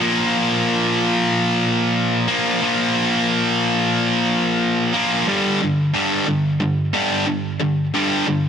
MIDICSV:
0, 0, Header, 1, 2, 480
1, 0, Start_track
1, 0, Key_signature, -2, "minor"
1, 0, Tempo, 665188
1, 1896, Time_signature, 4, 2, 24, 8
1, 6124, End_track
2, 0, Start_track
2, 0, Title_t, "Distorted electric guitar"
2, 0, Program_c, 0, 30
2, 0, Note_on_c, 0, 46, 98
2, 1, Note_on_c, 0, 53, 94
2, 11, Note_on_c, 0, 58, 120
2, 1640, Note_off_c, 0, 58, 0
2, 1643, Note_on_c, 0, 58, 104
2, 1649, Note_off_c, 0, 46, 0
2, 1653, Note_off_c, 0, 53, 0
2, 1660, Note_on_c, 0, 53, 82
2, 1667, Note_on_c, 0, 46, 73
2, 1877, Note_off_c, 0, 46, 0
2, 1884, Note_off_c, 0, 53, 0
2, 1886, Note_on_c, 0, 46, 96
2, 1899, Note_on_c, 0, 53, 107
2, 1902, Note_off_c, 0, 58, 0
2, 1905, Note_on_c, 0, 58, 108
2, 3555, Note_off_c, 0, 46, 0
2, 3556, Note_off_c, 0, 58, 0
2, 3561, Note_off_c, 0, 53, 0
2, 3565, Note_on_c, 0, 58, 93
2, 3580, Note_on_c, 0, 53, 88
2, 3585, Note_on_c, 0, 46, 76
2, 3795, Note_off_c, 0, 58, 0
2, 3803, Note_off_c, 0, 53, 0
2, 3804, Note_on_c, 0, 43, 98
2, 3805, Note_off_c, 0, 46, 0
2, 3812, Note_on_c, 0, 50, 96
2, 3816, Note_on_c, 0, 55, 107
2, 4035, Note_off_c, 0, 43, 0
2, 4039, Note_off_c, 0, 50, 0
2, 4040, Note_off_c, 0, 55, 0
2, 4055, Note_on_c, 0, 43, 72
2, 4061, Note_on_c, 0, 50, 81
2, 4271, Note_off_c, 0, 43, 0
2, 4274, Note_off_c, 0, 50, 0
2, 4284, Note_on_c, 0, 43, 88
2, 4293, Note_on_c, 0, 50, 81
2, 4295, Note_on_c, 0, 55, 80
2, 4515, Note_off_c, 0, 43, 0
2, 4519, Note_off_c, 0, 50, 0
2, 4520, Note_off_c, 0, 55, 0
2, 4525, Note_on_c, 0, 43, 72
2, 4528, Note_on_c, 0, 50, 78
2, 4746, Note_off_c, 0, 43, 0
2, 4747, Note_off_c, 0, 50, 0
2, 4762, Note_on_c, 0, 43, 81
2, 4764, Note_on_c, 0, 50, 83
2, 4985, Note_off_c, 0, 43, 0
2, 4986, Note_off_c, 0, 50, 0
2, 5002, Note_on_c, 0, 43, 92
2, 5009, Note_on_c, 0, 50, 89
2, 5010, Note_on_c, 0, 55, 106
2, 5233, Note_off_c, 0, 43, 0
2, 5233, Note_off_c, 0, 50, 0
2, 5238, Note_off_c, 0, 55, 0
2, 5241, Note_on_c, 0, 43, 63
2, 5241, Note_on_c, 0, 50, 81
2, 5465, Note_off_c, 0, 43, 0
2, 5465, Note_off_c, 0, 50, 0
2, 5481, Note_on_c, 0, 50, 84
2, 5482, Note_on_c, 0, 43, 80
2, 5705, Note_off_c, 0, 43, 0
2, 5705, Note_off_c, 0, 50, 0
2, 5728, Note_on_c, 0, 43, 84
2, 5733, Note_on_c, 0, 50, 95
2, 5735, Note_on_c, 0, 55, 107
2, 5958, Note_off_c, 0, 43, 0
2, 5960, Note_off_c, 0, 50, 0
2, 5961, Note_off_c, 0, 55, 0
2, 5967, Note_on_c, 0, 43, 69
2, 5969, Note_on_c, 0, 50, 73
2, 6124, Note_off_c, 0, 43, 0
2, 6124, Note_off_c, 0, 50, 0
2, 6124, End_track
0, 0, End_of_file